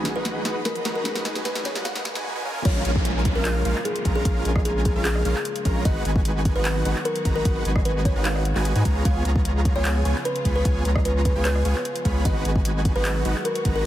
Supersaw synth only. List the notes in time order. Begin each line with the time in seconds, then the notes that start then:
Already playing: G#3 D#4 F#4 B4 G#5
0.16 G#3 D#4 F#4 B4 F#5
0.45 G#3 D#4 F#4 B4 F#5
0.85 G#3 D#4 F#4 B4 A#5
1.05 G#3 D#4 F#4 B4 F#5
1.25 G#3 D#4 F#4 B4 G#5
1.75 G#3 D#4 F#4 B4 F#5
2.15 G#3 D#4 F#4 B4 G#5
2.35 G#3 D#4 F#4 B4 G#5
2.45 G#3 C#4 F4 A#4 G#5
2.65 G#3 C#4 F4 A#4 F5
2.85 G#3 C#4 F4 A#4 G#5
3.36 G#3 C#4 F4 A#4 F5
3.65 G#3 C#4 F4 A#4 F5
4.05 G#3 C#4 F4 A#4 A#5
4.25 G#3 C#4 F4 A#4
4.45 G#3 C#4 F4 A#4 G#5
4.96 G#3 C#4 F4 A#4 F5
5.25 G#3 C#4 F4 A#4 F5
5.65 G#3 C#4 F4 A#4 A#5
5.85 G#3 F#4 B4 F#5
6.05 G#3 D#4 F#4 B4 G#5
6.56 G#3 D#4 F#4 B4 F#5
6.85 G#3 D#4 F#4 B4 F#5
7.25 G#3 D#4 F#4 B4 A#5
7.45 G#3 D#4 F#4 B4 F#5
7.65 G#3 D#4 F#4 B4 G#5
8.16 G#3 D#4 F#4 B4 F#5
8.56 G#3 D#4 F#4 B4 G#5
8.76 G#3 D#4 F#4 B4 G#5
8.85 B3
9.05 B3 F4 G#4 C#5 G#5
9.25 B3 F4 G#4 C#5 A#5
9.76 B3 F4 G#4 C#5 G#5
10.05 B3 F4 G#4 C#5 G#5
10.45 B3 F4 G#4 C#5 B5
10.65 B3 F4 G#4 C#5 G#5
10.85 B3 F4 G#4 C#5 A#5
11.36 B3 F4 G#4 C#5 G#5
11.65 B3 F4 G#4 C#5 G#5
12.05 B3 F4 G#4 C#5 B5
12.25 G#3 D#4 F#4 B4 F#5
12.45 G#3 D#4 F#4 B4 G#5
12.96 G#3 D#4 F#4 B4 F#5
13.25 G#3 D#4 F#4 B4 F#5
13.65 G#3 D#4 F#4 B4 A#5